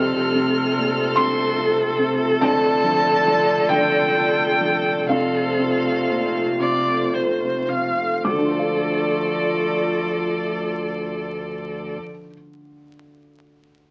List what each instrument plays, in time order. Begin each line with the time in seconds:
Already playing: sub bass F1, felt piano F2 F6, cello C3, ambient pad A3 F4 C5, harp C4 F4 C5, viola A4, violin F6
0.15 harp F5
0.35 felt piano C3
0.56 harp F4
0.76 felt piano A#2, harp F5
1.16 felt piano C3 C6, harp F4, violin C6
1.37 harp A4
1.58 felt piano F4, harp A4
1.79 harp F4
1.99 felt piano C3
2.21 harp A4
2.41 felt piano F2 A5, cello D3, harp D4, ambient pad D5, violin A5
2.64 harp D5
2.84 felt piano F3
3.05 harp D4
3.26 felt piano F3, harp D5
3.68 felt piano F3 G5, harp D4, violin G5
3.92 harp F4
4.16 felt piano F4
4.38 harp D4
4.61 felt piano F3
5.08 sub bass F1, felt piano F2 F5, cello C3, ambient pad A3 F4 C5, harp F4, viola A4, violin F5
5.33 harp F5
5.59 felt piano C3
5.83 harp F4
6.08 felt piano A#2, harp F5
6.60 felt piano C3, harp F4, viola D5
6.86 harp A4
7.12 felt piano F4, harp A4, viola C5
7.40 harp F4
7.68 felt piano C3, viola F5
7.96 harp A4
8.23 felt piano D2 D6, sub bass D2, cello F3, ambient pad A3 F4 D5, viola A4, violin D5
8.31 felt piano D3
8.38 felt piano D4
8.45 felt piano F4
8.52 felt piano A4
8.59 felt piano F5